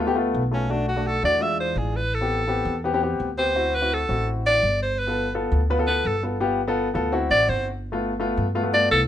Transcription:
Already playing: D2
0.07 A3 B3 G4
0.15 A3 B3 F4
0.34 B1
0.51 A3 B3 C#4 F4
0.70 A3 D4 F#4
0.89 F#4
0.96 A3 D4 F#4
1.07 A4
1.23 E2 A3 D4 F#4 D5
1.40 G#3 D4 F4 E5
1.60 C5
1.76 A1 G#4
1.96 B4
2.14 A4
2.21 B3 C4 G4
2.48 B3 C4 G4
2.65 E2
2.84 B3 C4 G4
2.94 B3 C4 G4
3.02 B3 C4 G4
3.20 D2
3.38 B3 C4 G4 C5
3.55 C4 E4 F#4
3.75 B4
3.81 C4 E4 F#4
3.94 A4
4.09 A1 C4 E4 F#4
4.47 D5
4.63 G1
4.82 C5
4.99 B4
5.07 B3 F4 A4
5.35 B3 F4 A4
5.52 D2
5.70 B3 F4 B4
5.79 B3 F4 A4
5.87 B3 F4 A4 B4
6.05 G1 A4
6.23 B3 F4 A4
6.40 B3 F4 G4
6.68 B3 F4 A4
6.94 D2 B3 F4 A4
7.12 C4 E4 F#4
7.31 A1 D5
7.49 G1 C5
7.92 A3 B3 F4
8.20 A3 B3 F4
8.37 G2
8.55 A3 B3 F4
8.63 A3 B3 F4
8.73 A3 B3 F4 D5
8.91 C2 A4

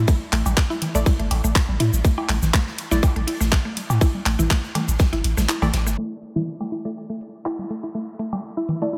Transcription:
0.07 A3, kick, closed hi-hat, high conga, shaker
0.33 A1 A3, clap, closed hi-hat
0.46 A1, cowbell, high conga, shaker
0.57 kick, snare, clap, closed hi-hat, shaker
0.70 E4, closed hi-hat, high conga
0.82 closed hi-hat, low conga
0.95 A1 A3 E4 D5, shaker
1.06 E4, kick, closed hi-hat, high conga, shaker
1.19 G1 A3, closed hi-hat
1.31 A1, closed hi-hat, cowbell, high conga
1.44 A1 A3, shaker
1.55 kick, snare, clap, closed hi-hat, shaker
1.69 A1, high conga
1.80 A2 E4, closed hi-hat
1.93 A1, high conga, shaker
2.05 A3, kick, closed hi-hat, shaker
2.18 E4, cowbell
2.29 A1 A3, clap, closed hi-hat, high conga
2.42 A1, snare, low conga, shaker
2.54 A3, kick, snare, clap, closed hi-hat, high conga, shaker
2.67 snare
2.78 closed hi-hat
2.91 A1 A3 E4 D5, snare, high conga, shaker
3.03 kick, closed hi-hat, cowbell, shaker
3.16 A1 A3, closed hi-hat, high conga
3.27 E4, closed hi-hat, open hi-hat
3.40 A1 A3, snare, shaker
3.52 kick, snare, clap, high conga, shaker
3.65 A3
3.77 closed hi-hat, high conga
3.90 A2, cowbell, shaker
4.01 E4, kick, closed hi-hat, shaker
4.15 high conga
4.26 A1 A3, clap, closed hi-hat
4.39 A1 E4, high conga, low conga, shaker
4.50 A3, kick, snare, clap, closed hi-hat, shaker
4.64 closed hi-hat
4.75 A3, closed hi-hat, cowbell, high conga, low conga
4.88 A1, closed hi-hat, shaker
4.99 kick, snare, closed hi-hat, high conga, shaker
5.12 G1 E4, snare, closed hi-hat
5.24 A1, closed hi-hat
5.37 A1 A3, snare, closed hi-hat, high conga, shaker
5.49 E4, clap, shaker
5.62 A1 A3 E4 D5, closed hi-hat, cowbell, high conga, low conga
5.73 A1, snare, closed hi-hat
5.86 G1 A3, snare, shaker
5.98 A3
6.23 closed hi-hat
6.36 E4, high conga, low conga
6.60 A3, cowbell, high conga
6.72 E4, closed hi-hat
6.85 A3 E4 D5, closed hi-hat
7.10 A3
7.21 closed hi-hat
7.46 E4, clap, cowbell
7.59 high conga
7.70 A3, closed hi-hat
7.83 E4
7.95 A3
8.19 A3, closed hi-hat
8.33 cowbell, high conga
8.57 E4
8.69 closed hi-hat, low conga
8.82 A3 E4 D5, closed hi-hat
8.93 E4

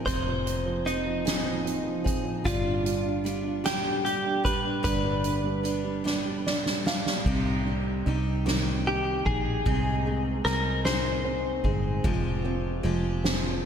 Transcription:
Already playing: F3 C4
0.06 F1 C3 F3 C4 D#4 G#4 C5, kick, closed hi-hat
0.27 F3
0.46 C4, closed hi-hat
0.66 F3
0.85 F3 C4 D#4 G#4, closed hi-hat
1.06 F3
1.25 F3 C4 D#4 G#4, snare, closed hi-hat
1.45 F3
1.65 C4, closed hi-hat
1.84 F3
2.04 C4 D#4 G#4, kick, closed hi-hat
2.24 F3
2.44 G1 G2 D3 G3 B3 D4 F4 G4, kick, closed hi-hat
2.64 D4
2.84 G3, closed hi-hat
3.04 D4
3.24 G3 B3 D4 G4, closed hi-hat
3.43 D4
3.64 G2 D3 G3 B3 D4 G4, snare, closed hi-hat
3.84 D4
4.05 G3 G4, closed hi-hat
4.25 D4
4.44 G3 B3 D4 G4 B4, kick, closed hi-hat
4.65 D4
4.83 G1 G2 D3 G3 B3 D4 G4 B4, kick, closed hi-hat
5.04 G3
5.24 D4, closed hi-hat
5.44 G3
5.63 G3 B3 D4 G4, closed hi-hat
5.84 G3
6.04 G2 D3 G3 B3 D4 G4, snare
6.25 G3
6.46 D4 D5, snare
6.66 G3, snare
6.86 G3 B3 D4 G4 F5, snare
7.06 G3, snare
7.26 C2 C3 G3 C4 D#4 G4, kick, crash
7.66 G3, ride
8.05 C2 G3 C4 D#4 G4, ride
8.45 C3 D#3 G3 C4 D#4 G4, snare, ride
8.87 D#4 G4, ride
9.26 A#1 C4 D#4 G#4, kick
9.66 C2 C3 G#3 C4 D#4 G#4, kick, ride
10.05 G#3, ride
10.45 C2 G#3 C4 D#4 G#4 A#4, snare, ride
10.85 C3 G#3 C4 D#4 G#4 C5, snare, ride
11.25 C4, ride
11.64 G1 G#3 C4 D#4 G#4, kick, ride
12.04 F1 F3 G#3 C4 F4 G4, kick, ride
12.44 C4, ride
12.83 F1 F3 G#3 C4 F4 G4, ride
13.24 F3 G#3 C4 F4, snare, ride

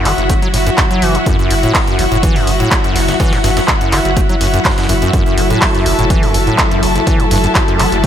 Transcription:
Already playing: F#3 E4 F#4 E5 F#5
0.05 F#1 E3, clap, closed hi-hat, open hi-hat
0.18 F#1, closed hi-hat
0.29 A3, kick, closed hi-hat
0.42 F#3, closed hi-hat
0.54 F#1 A2, snare, closed hi-hat, open hi-hat
0.67 F#2, snare, closed hi-hat
0.78 F#2, kick, snare, clap, closed hi-hat
0.91 F#3, closed hi-hat
1.02 F#1 E3, closed hi-hat, open hi-hat
1.15 A2, closed hi-hat
1.26 F#2, kick, closed hi-hat
1.39 F#2, closed hi-hat
1.50 F#1 G2, closed hi-hat, open hi-hat
1.63 A2, closed hi-hat
1.75 A3, kick, snare, clap, closed hi-hat, open hi-hat
1.87 F#2, closed hi-hat
1.99 F#1, snare, closed hi-hat, open hi-hat
2.12 F#1 A2, closed hi-hat
2.23 E3, kick, closed hi-hat
2.36 F#2, open hi-hat
2.47 F#1 G2, closed hi-hat, open hi-hat
2.60 A2, closed hi-hat
2.71 A3, kick, snare, clap, closed hi-hat
2.84 F#2, closed hi-hat
2.96 F#1, snare, open hi-hat
3.08 F#1, snare, closed hi-hat, open hi-hat
3.20 E3, kick, snare, closed hi-hat, open hi-hat
3.33 F#2, snare, closed hi-hat, open hi-hat
3.44 F#1 G2, snare, open hi-hat
3.57 F#2, snare, closed hi-hat, open hi-hat
3.68 F#2, kick, snare, clap, closed hi-hat
3.81 F#2, closed hi-hat
3.92 F#1 E3, snare, clap, open hi-hat
4.05 F#1, closed hi-hat
4.17 A3, kick, closed hi-hat
4.29 F#3, closed hi-hat
4.41 F#1 F#2, snare, closed hi-hat, open hi-hat
4.54 F#2, snare, closed hi-hat
4.65 F#2, kick, snare, clap, closed hi-hat, open hi-hat
4.71 snare, open hi-hat
4.78 F#2, snare, closed hi-hat, open hi-hat
4.84 snare, open hi-hat
4.89 F#1 F#2, snare, closed hi-hat, open hi-hat
5.02 F#2, closed hi-hat
5.13 F#2 A4, kick, closed hi-hat
5.26 F#2, closed hi-hat
5.38 F#1 G2, closed hi-hat, open hi-hat
5.50 A2 A5, closed hi-hat
5.62 A3, kick, snare, clap, closed hi-hat, open hi-hat
5.75 F#2, closed hi-hat
5.86 F#1, closed hi-hat, open hi-hat
5.99 F#1 A2, closed hi-hat
6.10 E3, kick, closed hi-hat
6.23 F#2, open hi-hat
6.34 F#1 G2, closed hi-hat, open hi-hat
6.47 A2, closed hi-hat
6.58 A3, kick, snare, clap, closed hi-hat
6.71 F#2, closed hi-hat
6.83 F#1, closed hi-hat, open hi-hat
6.96 F#1, closed hi-hat
7.07 E3, kick, closed hi-hat
7.20 F#2, closed hi-hat
7.31 F#1 G2, closed hi-hat, open hi-hat
7.44 F#2, closed hi-hat
7.55 F#2, kick, snare, clap, closed hi-hat
7.68 F#2, closed hi-hat
7.79 F#1 E3, clap, closed hi-hat, open hi-hat
7.92 F#1, closed hi-hat
8.04 kick, closed hi-hat

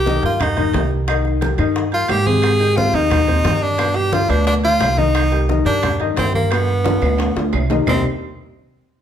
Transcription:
Already playing: C2 G4
0.06 D#3 D#4 D#5, high bongo, high conga, low timbale
0.22 G2 G3 F4 G4 A#4, high bongo, high conga, high timbale
0.40 D#4, high bongo, high conga, low conga, high timbale, claves
0.57 D#3 D#4 D#5, high bongo, high conga, low conga, high timbale
0.73 C2 G3 G4 A#4, high bongo, low bongo, high conga, high timbale, low timbale
1.08 D#3 D#4 D#5, high bongo, high conga, high timbale, claves
1.25 high bongo, high conga
1.41 G3 G4 A#4, high bongo, high conga, high timbale, low timbale
1.58 G2 D#3 D#4 D#5, high bongo, high conga, high timbale, claves
1.76 high bongo, high conga
1.92 G3 F4 G4 A#4, high conga, high timbale
2.08 G#2 G4, high bongo, low bongo, high conga, high timbale, low timbale, claves
2.26 C3 C4 G#4 C5, high bongo, high conga
2.42 high bongo, high conga, high timbale, claves
2.60 D#3 D#4 G4, high bongo, high conga, high timbale
2.76 C3 C4 F4 C5, high bongo, high conga, low timbale
2.93 D#2 D#3 D#4 G4, high bongo, high conga, high timbale
3.10 high bongo, high conga, low conga, high timbale, claves
3.28 C3 C4 C5, high bongo, high conga, low conga, high timbale
3.44 G2 D#3 D#4 G4, high bongo, low bongo, high conga, high timbale, low timbale
3.62 D4
3.78 B2 B3 B4, high bongo, high conga, high timbale, claves
3.95 G4, high bongo, high conga
4.12 D3 D4 F4, high bongo, high conga, high timbale, low timbale
4.29 D2 B2 B3 D4 B4, high bongo, high conga, high timbale, claves
4.47 D4, high bongo, high conga
4.64 D3 D4 F4, high conga, high timbale
4.80 C2, high bongo, low bongo, high conga, high timbale, low timbale, claves
4.98 D#3 D#4 D#5, high bongo, high conga
5.15 high bongo, high conga, high timbale, claves
5.32 G3 G4 A#4, high bongo, high conga, high timbale
5.49 D#3 D#4 D#5, high bongo, high conga, low timbale
5.65 G2 G3 D4 G4 A#4, high bongo, high conga, high timbale
5.83 high bongo, high conga, low conga, high timbale, claves
6.00 D#3 D#4 D#5, high bongo, high conga, high timbale
6.17 G2 G3 C4 G4 A#4, high bongo, low bongo, high conga, high timbale, low timbale
6.35 A#3, high conga
6.51 B2 B3 B4, high bongo, high timbale, claves
6.69 high bongo, high conga
6.84 D3 D4 F4, high bongo, high conga, high timbale
7.01 D2 B2 B3 B4, high bongo, high conga, high timbale, claves
7.18 high bongo, high conga, high timbale
7.36 D2 D3 D4 F4, high bongo, high conga
7.53 C2, high conga, low timbale, claves
7.70 D#3 D#4 D#5, low bongo, high conga, low timbale
7.86 C2 C3 G3 A#3 C4 D4 D#4, low bongo, low conga, low timbale, claves

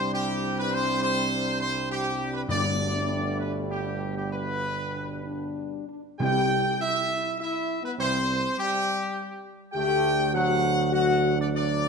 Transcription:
Already playing: C2 C3 G3 C4 D4 C5
0.13 G4
0.57 B4
0.72 C5
1.01 C5
1.60 C5
1.90 G4
2.33 B4
2.48 G1 G2 B2 G3 A3 D4 D5
3.39 B4
3.69 G4
4.16 G4
4.32 B4
4.94 D4
5.25 D4
5.89 D4
6.19 C2 C3 E3 G3 G4 G5
6.79 E4 E5
7.39 E4 E5
7.82 B3 B4
7.98 C2 E3 G3 C4 C5
8.57 G3 G4
9.74 D2 D3 A3 G4 G5
10.32 D3 F#3 F#4 F#5
10.92 D3 F#3 F#4 F#5
11.38 D4 D5
11.54 D3 F#3 D4 D5

